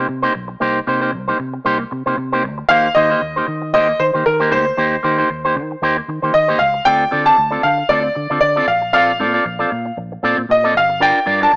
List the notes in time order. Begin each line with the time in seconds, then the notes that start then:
0.08 C3, muted clean electric guitar stroke
0.22 A#3 D#4 G4 C5
0.34 B1, muted clean electric guitar stroke
0.48 muted clean electric guitar stroke
0.60 C2 A#3 D#4 G4 C5
0.87 C3 A#3 D#4 G4 C5
1.01 A#3 D#4 G4 C5
1.13 C2
1.28 A#3 D#4 G4 C5
1.39 C3, muted clean electric guitar stroke
1.53 muted clean electric guitar stroke
1.65 C2 A#3 D#4 G4 C5
1.79 muted clean electric guitar stroke
1.91 C3, muted clean electric guitar stroke
2.06 C3 A#3 D#4 G4 C5
2.17 C3, muted clean electric guitar stroke
2.32 A#3 D#4 G4 C5
2.44 D2, muted clean electric guitar stroke
2.58 muted clean electric guitar stroke
2.69 D#2 A#3 D#4 G4 C5 F5
2.95 D#3 A#3 D#4 G4 C5 D#5
3.10 A#3 D#4 G4 C5
3.22 D#2, muted clean electric guitar stroke
3.36 A#3 D#4 G4 C5
3.47 D#3, muted clean electric guitar stroke
3.62 muted clean electric guitar stroke
3.73 D#2 A#3 D#4 G4 C5 D#5
3.89 muted clean electric guitar stroke
4.00 D#3 C5, muted clean electric guitar stroke
4.13 D#3 A#3 D#4 G4 C5
4.26 D#3 A#4
4.40 A#3 D#4 G4 C5
4.50 D2 A#3 D#4 G4 C5
4.66 muted clean electric guitar stroke
4.77 D#2 A#3 D#4 G4 C5
5.03 D#3 A#3 D#4 G4 C5
5.18 A#3 D#4 G4 C5
5.30 D#2
5.45 A#3 D#4 G4 C5
5.56 D#3
5.71 muted clean electric guitar stroke
5.82 D#2 A#3 D#4 G4 C5
5.98 muted clean electric guitar stroke
6.08 D#3, muted clean electric guitar stroke
6.22 D#3 A#3 D#4 G4 C5
6.34 D#3 D#5, muted clean electric guitar stroke
6.48 A#3 D#4 G4 C5
6.59 C#2 F5, muted clean electric guitar stroke
6.74 muted clean electric guitar stroke
6.85 D2 C4 F4 A4 D5 G5
7.11 D3 C4 F4 A4 D5
7.25 C4 F4 A4 D5 A5
7.37 D2, muted clean electric guitar stroke
7.51 C4 F4 A4 D5
7.63 D3 F5, muted clean electric guitar stroke
7.78 muted clean electric guitar stroke
7.89 D2 C4 F4 A4 D5
8.04 muted clean electric guitar stroke
8.15 D3, muted clean electric guitar stroke
8.30 D3 C4 F4 A4 D5
8.41 D3 D5, muted clean electric guitar stroke
8.56 C4 F4 A4 D5
8.67 A#1 F5, muted clean electric guitar stroke
8.82 muted clean electric guitar stroke
8.93 C4 F4 A4 D5 F5
9.20 A#2 C4 F4 A4 D5
9.34 C4 F4 A4 D5
9.45 A#1, muted clean electric guitar stroke
9.59 C4 F4 A4 D5
9.71 A#2, muted clean electric guitar stroke
9.86 muted clean electric guitar stroke
9.97 A#1, muted clean electric guitar stroke
10.12 muted clean electric guitar stroke
10.23 A#2 C4 F4 A4 D5
10.38 A#2, muted clean electric guitar stroke
10.49 A#2 D#5, muted clean electric guitar stroke
10.64 C4 F4 A4 D5
10.75 G1 F5, muted clean electric guitar stroke
10.89 muted clean electric guitar stroke
11.00 D4 F4 A#4 D5 G5
11.26 G2 D4 F4 A#4 D5
11.41 D4 F4 A#4 D5 A5
11.53 G1, muted clean electric guitar stroke